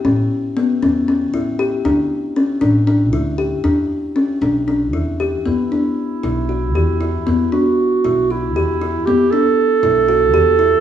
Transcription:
<<
  \new Staff \with { instrumentName = "Clarinet" } { \time 7/8 \key e \dorian \tempo 4 = 117 r2. r8 | r2. r8 | r2. r8 | e'2.~ e'8~ |
e'8 fis'4. e'4. | g'8 a'2. | }
  \new Staff \with { instrumentName = "Kalimba" } { \time 7/8 \key e \dorian cis'4 b8 cis'8 cis'8 e'8 g'8 | d'4 cis'8 d'8 d'8 e'8 g'8 | d'4 cis'8 d'8 d'8 e'8 g'8 | b8 d'4 e'8 fis'8 g'8 e'8 |
b8 d'4 e'8 fis'8 g'8 e'8 | b8 d'4 e'8 fis'8 g'8 e'8 | }
  \new Staff \with { instrumentName = "Upright bass" } { \clef bass \time 7/8 \key e \dorian a,,8 r4 e,4 a,,4 | d,8 r4 a,,4 d,4 | e,8 r4 b,,4 e,4 | e,8 r4 b,,4 e,4 |
e,8 r4 b,,4 e,4 | e,8 r4 b,,4 e,4 | }
>>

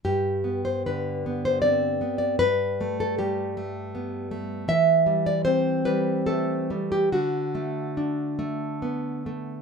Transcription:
\new Staff \with { instrumentName = "Nylon-string guitar" } { \time 3/4 \key g \major \tempo 4 = 75 << { g'8. c''16 b'8. c''16 d''8. d''16 | b'8. a'16 g'4. r8 | e''8. d''16 c''8 b'8 a'8. g'16 | fis'2~ fis'8 r8 | } \\ { g,8 b8 d8 b8 c'8 b8 | g,8 a8 g8 a8 b8 a8 | e8 g8 c'8 g8 a8 g8 | d8 a8 d'8 a8 b8 a8 | } >> }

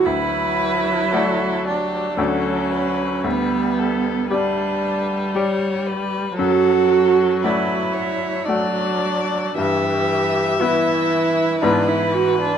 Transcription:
<<
  \new Staff \with { instrumentName = "Violin" } { \time 3/4 \key d \major \tempo 4 = 57 b'4 a'8 g'8 a'8 b'8 | b'8 a'8 b'4 cis''8 b'8 | a'4 b'8 cis''8 d''4 | e''2 b'4 | }
  \new Staff \with { instrumentName = "Grand piano" } { \time 3/4 \key d \major d,4 <a fis' d''>4 <d, a fis' d''>4 | d,4 <g g' d''>4 <g g' d''>4 | fis,4 <a fis' d''>4 <a fis' d''>4 | g,4 <b e' b'>4 <gis, b e' b'>4 | }
  \new Staff \with { instrumentName = "Cello" } { \time 3/4 \key d \major e'4. d'8 cis'4 | b4 d'4 r4 | fis'4 e'4 d'4 | g'4 e'4 d'16 e'16 fis'16 d'16 | }
  \new Staff \with { instrumentName = "Viola" } { \clef bass \time 3/4 \key d \major fis2 fis4 | g4 g2 | fis2 fis4 | e4 e4 e4 | }
>>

